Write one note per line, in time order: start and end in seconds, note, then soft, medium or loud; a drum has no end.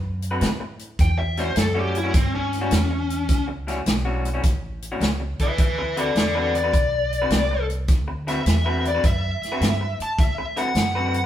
0.00 0.40 F#2 medium
0.22 closed hi-hat medium
0.31 0.47 D3 medium
0.31 0.47 C4 medium
0.31 0.47 F#4 medium
0.31 0.47 B4 medium
0.41 0.97 A2 loud
0.41 snare loud
0.41 closed hi-hat medium
0.60 muted clean electric guitar stroke medium
0.79 closed hi-hat medium
0.99 1.55 E2 medium
0.99 1.18 G5 medium
0.99 kick loud
0.99 snare soft
0.99 closed hi-hat medium
1.18 1.37 E5 medium
1.18 muted clean electric guitar stroke medium
1.37 1.50 A2 medium
1.37 1.50 G3 medium
1.37 1.50 C#4 medium
1.37 1.50 F#4 medium
1.37 1.57 C5 medium
1.37 snare soft
1.37 closed hi-hat medium
1.56 2.12 F#2 medium
1.56 1.79 A4 medium
1.56 muted clean electric guitar stroke medium
1.56 snare loud
1.56 closed hi-hat medium
1.75 1.98 A2 medium
1.75 1.98 G3 medium
1.75 1.98 C#4 medium
1.75 1.97 F#4 medium
1.79 1.96 G4 medium
1.95 2.15 E4 medium
1.95 closed hi-hat medium
2.03 2.12 A2 medium
2.03 2.13 G3 medium
2.03 2.13 C#4 medium
2.03 2.13 F#4 medium
2.13 2.70 G2 medium
2.13 2.34 C4 medium
2.13 muted clean electric guitar stroke soft
2.13 kick loud
2.13 snare soft
2.13 closed hi-hat medium
2.35 3.46 C#4 medium
2.53 snare soft
2.53 closed hi-hat medium
2.61 2.77 A2 medium
2.61 2.77 G3 medium
2.61 2.77 C#4 medium
2.61 2.77 F#4 medium
2.71 3.27 E2 medium
2.71 snare loud
2.71 closed hi-hat medium
2.90 muted clean electric guitar stroke medium
3.10 closed hi-hat medium
3.29 3.85 C#2 medium
3.29 kick loud
3.29 snare soft
3.29 closed hi-hat medium
3.48 muted clean electric guitar stroke soft
3.67 3.80 A2 medium
3.67 3.80 G3 medium
3.67 3.80 C#4 medium
3.67 3.80 F#4 medium
3.67 snare soft
3.67 closed hi-hat medium
3.86 4.42 B1 medium
3.86 muted clean electric guitar stroke medium
3.86 snare loud
3.86 closed hi-hat medium
4.05 4.28 A2 medium
4.05 4.28 G3 medium
4.05 4.28 C#4 medium
4.05 4.27 F#4 medium
4.25 closed hi-hat medium
4.34 4.42 A2 medium
4.34 4.42 G3 medium
4.34 4.42 C#4 medium
4.34 4.43 F#4 medium
4.43 5.00 A1 medium
4.43 muted clean electric guitar stroke soft
4.43 kick loud
4.43 snare soft
4.43 closed hi-hat medium
4.82 closed hi-hat medium
4.92 5.07 A2 medium
4.92 5.07 G3 medium
4.92 5.07 C#4 medium
4.92 5.07 F#4 medium
5.01 5.37 C#2 medium
5.01 snare loud
5.01 closed hi-hat medium
5.20 muted clean electric guitar stroke soft
5.39 5.59 B4 medium
5.39 5.60 E5 medium
5.39 muted upright bass stroke soft
5.39 kick medium
5.39 closed hi-hat medium
5.58 6.14 D2 medium
5.58 5.77 B4 medium
5.58 5.78 E5 medium
5.58 kick loud
5.58 closed hi-hat medium
5.78 5.96 B4 medium
5.78 5.97 E5 medium
5.78 muted clean electric guitar stroke soft
5.97 6.09 D3 medium
5.97 6.09 C4 medium
5.97 6.10 F#4 medium
5.97 6.15 A4 medium
5.97 6.10 B4 medium
5.97 6.16 D5 medium
5.97 closed hi-hat medium
6.15 6.71 E2 medium
6.15 6.35 A4 medium
6.15 6.36 D5 medium
6.15 muted clean electric guitar stroke soft
6.15 snare loud
6.15 closed hi-hat medium
6.35 6.58 D3 medium
6.35 6.58 C4 medium
6.35 6.57 F#4 medium
6.35 6.53 A4 medium
6.35 6.57 B4 medium
6.35 6.54 D5 medium
6.55 7.66 D5 loud
6.55 closed hi-hat medium
6.64 6.72 D3 medium
6.64 6.72 C4 medium
6.64 6.72 F#4 medium
6.64 6.73 B4 medium
6.73 7.29 B1 medium
6.73 muted clean electric guitar stroke soft
6.73 kick loud
6.73 closed hi-hat medium
7.13 closed hi-hat medium
7.22 7.37 D3 medium
7.22 7.37 C4 medium
7.22 7.37 F#4 medium
7.22 7.37 B4 medium
7.30 7.86 C2 medium
7.30 snare loud
7.30 closed hi-hat medium
7.51 muted clean electric guitar stroke medium
7.70 closed hi-hat medium
7.88 8.44 D2 medium
7.88 kick loud
7.88 snare soft
7.88 closed hi-hat medium
8.08 muted clean electric guitar stroke medium
8.27 8.39 D3 medium
8.27 8.39 C4 medium
8.27 8.40 F#4 medium
8.27 8.40 B4 medium
8.27 8.83 E5 medium
8.27 snare soft
8.27 closed hi-hat medium
8.46 9.01 E2 medium
8.46 muted clean electric guitar stroke soft
8.46 snare loud
8.46 closed hi-hat loud
8.66 8.88 D3 medium
8.66 8.88 C4 medium
8.66 8.88 F#4 medium
8.66 8.87 B4 medium
8.85 9.04 D5 medium
8.85 closed hi-hat medium
8.94 9.03 D3 medium
8.94 9.04 C4 medium
8.94 9.04 F#4 medium
8.94 9.03 B4 medium
9.04 9.39 F#2 medium
9.04 9.98 E5 medium
9.04 muted clean electric guitar stroke soft
9.04 kick loud
9.04 snare soft
9.04 closed hi-hat medium
9.42 muted upright bass stroke soft
9.42 snare soft
9.42 closed hi-hat medium
9.52 9.67 D3 medium
9.52 9.67 C4 medium
9.52 9.67 F#4 medium
9.52 9.67 B4 medium
9.61 9.97 G2 medium
9.61 snare loud
9.61 closed hi-hat medium
9.81 muted clean electric guitar stroke medium
9.99 10.19 A5 medium
9.99 muted upright bass stroke soft
9.99 closed hi-hat medium
10.19 10.74 A2 medium
10.19 10.56 E5 medium
10.19 kick loud
10.19 snare soft
10.19 closed hi-hat medium
10.38 muted clean electric guitar stroke medium
10.57 10.69 D3 medium
10.57 10.69 C4 medium
10.57 10.69 F#4 medium
10.57 10.69 B4 medium
10.57 11.26 F#5 loud
10.57 snare soft
10.57 closed hi-hat medium
10.75 11.26 F#2 loud
10.75 muted clean electric guitar stroke soft
10.75 snare loud
10.75 closed hi-hat medium
10.95 11.18 D3 medium
10.95 11.18 C4 medium
10.95 11.17 F#4 medium
10.95 11.17 B4 loud
11.14 closed hi-hat medium